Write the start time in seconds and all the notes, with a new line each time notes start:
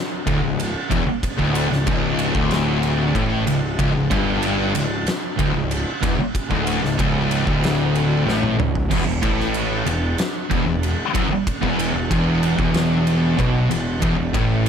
0.27 D1 D2, kick, ride
0.42 C#1 C#2
0.60 ride
0.90 E1 E2, kick, ride
1.06 muted distorted electric guitar stroke, muted picked electric bass stroke
1.23 kick, ride
1.37 D1 D2, kick
1.55 ride
1.70 C#1 C#2, snare
1.86 C#1 C#2, kick, ride
2.19 ride
2.35 D1 D2, kick
2.51 snare, ride
2.83 ride
3.15 A1 A2, kick, ride
3.47 C#1 C#2, ride
3.79 C#1 C#2, kick, ride
3.95 C#1 C#2
4.11 G1 G2, kick, ride
4.42 ride
4.75 C#1 C#2, ride
5.07 snare, ride
5.39 D1 D2, kick, ride
5.55 C#1 C#2
5.71 ride
6.02 E1 E2, kick, ride
6.19 muted distorted electric guitar stroke, muted picked electric bass stroke
6.35 kick, ride
6.50 D1 D2, kick
6.67 ride
6.83 C#1 C#2, snare
6.99 C#1 C#2, kick, ride
7.31 ride
7.47 D1 D2, kick
7.64 snare, ride
7.95 ride
8.27 A1 A2, snare
8.43 high tom
8.58 C#1 C#2, mid tom
8.75 floor tom
8.90 E1 E2, kick, crash
9.06 E1 E2
9.22 A1 A2, kick, ride
9.40 snare
9.54 ride
9.86 E1 E2, ride
10.18 snare, ride
10.51 E1 E2, kick, ride
10.66 E1 E2
10.83 ride
11.14 F#1 F#2, kick, ride
11.31 muted distorted electric guitar stroke, muted picked electric bass stroke
11.47 kick, ride
11.62 E1 E2, kick
11.79 ride
11.95 E1 E2
12.11 E1 E2, kick, ride
12.43 ride
12.59 E1 E2, kick
12.74 snare, ride
13.07 ride
13.38 B1 B2, kick, ride
13.70 E1 E2, ride
14.01 E1 E2, kick, ride
14.18 E1 E2
14.33 A1 A2, kick, ride